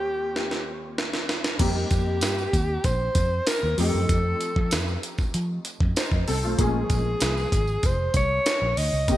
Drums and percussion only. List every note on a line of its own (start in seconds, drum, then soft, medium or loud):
0.36 snare medium
0.51 snare medium
0.98 snare medium
1.13 snare medium
1.29 snare loud
1.44 snare loud
1.59 kick loud
1.59 closed hi-hat medium
1.59 crash medium
1.59 tambourine soft
1.91 kick medium
1.91 closed hi-hat medium
1.91 tambourine soft
2.21 snare loud
2.21 closed hi-hat loud
2.21 tambourine medium
2.38 tambourine soft
2.53 kick medium
2.53 closed hi-hat medium
2.53 tambourine soft
2.84 kick medium
2.84 closed hi-hat medium
2.84 tambourine soft
3.15 kick medium
3.15 closed hi-hat medium
3.15 tambourine soft
3.47 snare loud
3.47 closed hi-hat medium
3.47 tambourine medium
3.78 open hi-hat medium
3.78 tambourine soft
4.09 kick loud
4.09 closed hi-hat medium
4.09 tambourine soft
4.40 closed hi-hat medium
4.40 tambourine soft
4.56 kick medium
4.71 snare loud
4.71 closed hi-hat medium
4.71 tambourine medium
4.88 tambourine soft
5.03 closed hi-hat medium
5.03 tambourine soft
5.18 kick medium
5.18 tambourine soft
5.34 closed hi-hat medium
5.34 tambourine soft
5.65 closed hi-hat medium
5.65 tambourine soft
5.80 kick loud
5.96 snare loud
5.96 closed hi-hat medium
5.96 tambourine medium
6.12 kick medium
6.27 open hi-hat medium
6.27 tambourine soft
6.43 tambourine soft
6.59 kick loud
6.59 closed hi-hat medium
6.59 tambourine soft
6.90 kick medium
6.90 closed hi-hat medium
6.90 tambourine soft
7.21 snare loud
7.21 closed hi-hat loud
7.21 tambourine medium
7.37 tambourine soft
7.52 kick medium
7.52 closed hi-hat medium
7.52 tambourine soft
7.67 tambourine soft
7.83 kick medium
7.83 closed hi-hat medium
7.83 tambourine soft
8.14 kick medium
8.14 closed hi-hat medium
8.14 tambourine soft
8.46 snare loud
8.46 closed hi-hat medium
8.46 tambourine medium
8.77 open hi-hat medium
8.77 tambourine soft
8.93 tambourine soft
9.08 kick loud
9.08 closed hi-hat medium
9.08 tambourine soft